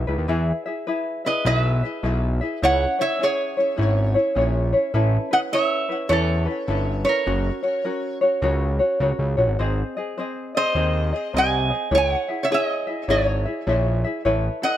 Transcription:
0.07 analog synth bass C#2, ukulele D#4 E4 B4
0.18 analog synth bass D#2
0.28 analog synth bass E2, ukulele E4 G#4 B4 E5
0.66 ukulele E4 G#4 E5
0.87 ukulele E4 G#4 B4 E5
1.25 ukulele E4 G#4 E5, resonator guitar played with a steel bar B4 D#5
1.45 analog synth bass B1, ukulele E4 G#4 B4 E5, resonator guitar played with a steel bar B4 D#5
1.58 resonator guitar played with a steel bar E5
1.83 ukulele E4 G#4 E5
2.03 analog synth bass B1, ukulele E4 G#4 B4 E5
2.41 ukulele E4 G#4 E5
2.62 analog synth bass C#2, ukulele C#4 E4 G#4 C#5, resonator guitar played with a steel bar C#5 F#5
2.99 ukulele C#4 E4 C#5, resonator guitar played with a steel bar C#5 E5
3.19 ukulele C#4 E4 G#4 C#5
3.23 resonator guitar played with a steel bar G#4 C#5
3.57 ukulele C#4 E4 C#5
3.76 analog synth bass G#1, ukulele C#4 E4 G#4 C#5
4.14 ukulele C#4 E4 C#5
4.35 analog synth bass A#1, ukulele C#4 E4 G#4 C#5
4.73 ukulele C#4 E4 C#5
4.94 analog synth bass A1, ukulele C#4 E4 A4 B4
5.31 ukulele C#4 E4 B4, resonator guitar played with a steel bar D#5 F#5
5.52 ukulele C#4 E4 A4 B4, resonator guitar played with a steel bar C#5 E5
5.89 ukulele C#4 E4 B4
6.09 analog synth bass E2, ukulele C#4 E4 A4 B4, resonator guitar played with a steel bar A4 C#5
6.46 ukulele C#4 E4 B4
6.67 analog synth bass G1, ukulele C#4 E4 A4 B4
7.05 ukulele C#4 E4 B4, resonator guitar played with a steel bar C#5
7.09 resonator guitar played with a steel bar A#4
7.26 analog synth bass F#1, ukulele C#4 F#4 A#4 C#5
7.63 ukulele C#4 F#4 C#5
7.85 ukulele C#4 F#4 A#4 C#5
8.21 ukulele C#4 F#4 C#5
8.42 analog synth bass C#2, ukulele C#4 F#4 A#4 C#5
8.79 ukulele C#4 F#4 C#5
9.00 analog synth bass C#2, ukulele C#4 F#4 A#4 C#5
9.19 analog synth bass C#2
9.37 analog synth bass A#1, ukulele C#4 F#4 C#5
9.48 analog synth bass G#1
9.59 analog synth bass G#1, ukulele C4 G#4 C5 D#5
9.97 ukulele C4 G#4 D#5
10.18 ukulele C4 G#4 C5 D#5
10.55 ukulele C4 G#4 D#5, resonator guitar played with a steel bar C5 D#5
10.75 analog synth bass D#2, ukulele C4 G#4 C5 D#5
11.13 ukulele C4 G#4 D#5
11.33 analog synth bass C2, ukulele C4 G#4 C5 D#5, resonator guitar played with a steel bar D#5
11.38 resonator guitar played with a steel bar G#5
11.70 ukulele C4 G#4 D#5
11.91 analog synth bass C#2, ukulele E4 G#4 C#5 E5, resonator guitar played with a steel bar C#5
11.97 resonator guitar played with a steel bar F#5
12.28 ukulele E4 G#4 E5
12.43 resonator guitar played with a steel bar C#5 E5
12.50 ukulele E4 G#4 C#5 E5, resonator guitar played with a steel bar G#4
12.54 resonator guitar played with a steel bar D#5
12.87 ukulele E4 G#4 E5
13.08 analog synth bass G#1, ukulele E4 G#4 C#5 E5, resonator guitar played with a steel bar G#4 C#5
13.45 ukulele E4 G#4 E5
13.67 analog synth bass A#1, ukulele E4 G#4 C#5 E5
14.04 ukulele E4 G#4 E5
14.25 analog synth bass A1, ukulele E4 A4 B4 C#5
14.62 ukulele E4 A4 B4, resonator guitar played with a steel bar D#5 F#5

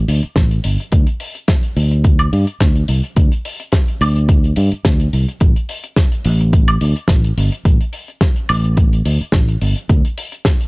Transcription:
0.08 fingered electric bass D2, open hi-hat
0.23 muted fingered electric bass stroke, closed hi-hat
0.36 fingered electric bass A1, kick, snare, closed hi-hat
0.51 closed hi-hat
0.64 fingered electric bass G1, open hi-hat
0.80 closed hi-hat
0.92 fingered electric bass D2, kick, closed hi-hat
1.07 closed hi-hat
1.20 open hi-hat
1.35 closed hi-hat
1.48 kick, snare, closed hi-hat
1.63 closed hi-hat
1.77 fingered electric bass D2, open hi-hat
1.91 closed hi-hat
2.04 kick, closed hi-hat
2.19 closed hi-hat, high woodblock
2.33 fingered electric bass G2, open hi-hat
2.47 closed hi-hat
2.60 fingered electric bass D2, kick, snare, closed hi-hat
2.76 closed hi-hat
2.88 fingered electric bass C2, open hi-hat
3.04 closed hi-hat
3.16 fingered electric bass D2, kick, closed hi-hat
3.32 closed hi-hat
3.45 open hi-hat
3.60 closed hi-hat
3.72 kick, snare, closed hi-hat
3.88 closed hi-hat
4.01 fingered electric bass D2, open hi-hat, high woodblock
4.16 closed hi-hat
4.29 kick, closed hi-hat
4.44 closed hi-hat
4.56 fingered electric bass G2, open hi-hat
4.72 muted fingered electric bass stroke, closed hi-hat
4.85 fingered electric bass D2, kick, snare, closed hi-hat
5.00 closed hi-hat
5.13 fingered electric bass C2, open hi-hat
5.29 closed hi-hat
5.40 fingered electric bass A1, kick, closed hi-hat
5.56 closed hi-hat
5.69 open hi-hat
5.84 closed hi-hat
5.96 kick, snare, closed hi-hat
6.12 closed hi-hat
6.25 fingered electric bass A1, open hi-hat
6.41 closed hi-hat
6.53 kick, closed hi-hat
6.68 closed hi-hat, high woodblock
6.81 fingered electric bass D2, open hi-hat
6.96 closed hi-hat
7.08 fingered electric bass A1, kick, snare, closed hi-hat
7.24 closed hi-hat
7.37 fingered electric bass G1, open hi-hat
7.52 closed hi-hat
7.65 fingered electric bass A1, kick, closed hi-hat
7.81 closed hi-hat
7.93 open hi-hat
8.08 closed hi-hat
8.21 kick, snare, closed hi-hat
8.36 closed hi-hat
8.49 fingered electric bass A1, open hi-hat, high woodblock
8.64 closed hi-hat
8.77 kick, closed hi-hat
8.93 closed hi-hat
9.05 fingered electric bass D2, open hi-hat
9.21 muted fingered electric bass stroke, closed hi-hat
9.32 fingered electric bass A1, kick, snare, closed hi-hat
9.49 closed hi-hat
9.61 fingered electric bass G1, open hi-hat
9.76 closed hi-hat
9.89 fingered electric bass D2, kick, closed hi-hat
10.05 closed hi-hat
10.18 open hi-hat
10.32 closed hi-hat
10.45 kick, snare, closed hi-hat
10.61 closed hi-hat

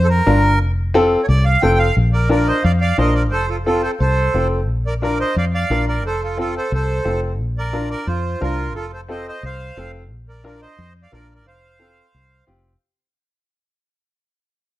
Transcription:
Already playing: fingered electric bass F2
0.04 accordion A4
0.09 accordion A#4
0.26 fingered electric bass G1, upright piano D4 F4 A#4
0.61 fingered electric bass F1
0.94 upright piano C4 F4 A4
1.23 accordion C#5
1.28 fingered electric bass C2, accordion D5
1.45 accordion F5
1.62 fingered electric bass F1, upright piano C4 F4 A4, accordion G5
1.78 accordion F5
1.97 fingered electric bass A#1
2.13 accordion A#4 D5
2.29 upright piano D4 F4 A#4, accordion A#4 D5
2.47 accordion C5 D#5
2.63 fingered electric bass F2, accordion D5 F5
2.81 accordion D5 F5
2.98 fingered electric bass A#1, upright piano D4 F4 C5, accordion A#4 D#5
3.14 accordion A#4 D5
3.31 fingered electric bass F1, accordion A4 C5
3.48 accordion F4 A4
3.65 upright piano C4 F4 A4, accordion F4 A4
3.83 accordion A4 C5
4.00 fingered electric bass C2, accordion A4 C5
4.34 fingered electric bass F1, upright piano C4 F4 A4
4.68 fingered electric bass A#1
4.87 accordion A#4 D5
5.02 upright piano D4 F4 A#4, accordion A#4 D5
5.20 accordion C5 D#5
5.36 fingered electric bass F2, accordion D5 F5
5.54 accordion D5 F5
5.70 fingered electric bass A#1, upright piano D4 F4 A#4
5.88 accordion A#4 D5
6.04 fingered electric bass F1, accordion A4 C5
6.23 accordion F4 A4
6.37 upright piano C4 F4 A4, accordion F4 A4
6.57 accordion A4 C5
6.72 fingered electric bass C2, accordion A4 C5
7.05 fingered electric bass F1, upright piano C4 F4 A4
7.40 fingered electric bass A#1
7.58 accordion A#4 D5
7.73 upright piano D4 F4 A#4
7.90 accordion A#4 D5
8.07 fingered electric bass F2, accordion F4 C5
8.41 fingered electric bass C2, upright piano D4 F4 A#4, accordion F4 A#4
8.75 fingered electric bass F1, accordion F4 A4
8.93 accordion A4 C5
9.09 upright piano C4 F4 A4, accordion C5 D#5
9.28 accordion C5 D#5
9.43 fingered electric bass C2, accordion C5 F5
9.77 fingered electric bass F1, upright piano C4 F4 A4
10.11 fingered electric bass A#1
10.29 accordion A#4 D5
10.44 upright piano D4 F4 A#4, accordion A#4 D5
10.62 accordion C5 D#5
10.78 fingered electric bass F2
11.03 accordion D5 F5
11.12 fingered electric bass A#1, upright piano D4 F4 A#4, accordion A#4 D5
11.35 accordion A#4 D5
11.46 fingered electric bass F1, accordion C5 F5
11.79 upright piano C4 F4 A4
12.14 fingered electric bass C2
12.47 fingered electric bass F1, upright piano C4 F4 G4

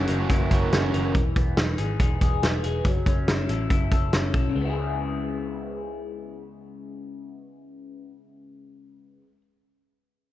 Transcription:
Already playing: overdriven electric guitar F#2 C#3 E3 A#3 C#4 F#4, clean electric guitar F#3 C#4 E4
0.07 picked electric bass F#1, clean electric guitar A#4, closed hi-hat
0.18 overdriven electric guitar E3 A#3 C#4 F#4
0.30 picked electric bass F#1, clean electric guitar E4, kick, closed hi-hat
0.50 picked electric bass F#1, overdriven electric guitar E3 A#3 C#4 F#4, clean electric guitar A#4, kick, closed hi-hat
0.72 picked electric bass F#1, clean electric guitar C#4, snare, closed hi-hat
0.81 overdriven electric guitar E3 A#3 C#4 F#4
0.94 picked electric bass F#1, clean electric guitar A#4, closed hi-hat
1.14 picked electric bass E1, clean electric guitar E3, kick, closed hi-hat
1.36 picked electric bass E1, clean electric guitar B3, kick, closed hi-hat
1.57 picked electric bass E1, clean electric guitar D#4, snare, closed hi-hat
1.78 picked electric bass G#1, clean electric guitar G#4, closed hi-hat
2.00 picked electric bass E1, clean electric guitar D#4, kick, closed hi-hat
2.21 picked electric bass E1, clean electric guitar G#4, kick, closed hi-hat
2.43 picked electric bass E1, clean electric guitar B3, snare, closed hi-hat
2.64 picked electric bass E1, clean electric guitar G#4, closed hi-hat
2.85 picked electric bass F#1, clean electric guitar F#3, kick, closed hi-hat
3.06 picked electric bass F#1, clean electric guitar C#4, kick, closed hi-hat
3.28 picked electric bass F#1, clean electric guitar E4, snare, closed hi-hat
3.49 picked electric bass A1, clean electric guitar A4, closed hi-hat
3.70 picked electric bass F#1, clean electric guitar E4, kick, closed hi-hat
3.92 picked electric bass F#1, clean electric guitar A4, kick, closed hi-hat
4.13 picked electric bass F#1, clean electric guitar C#4, snare, closed hi-hat
4.34 picked electric bass B1, clean electric guitar A4, kick, closed hi-hat
4.49 clean electric guitar C#3
4.55 picked electric bass C#2, clean electric guitar G#3
4.61 clean electric guitar B3
4.65 clean electric guitar E4
4.70 clean electric guitar G#4

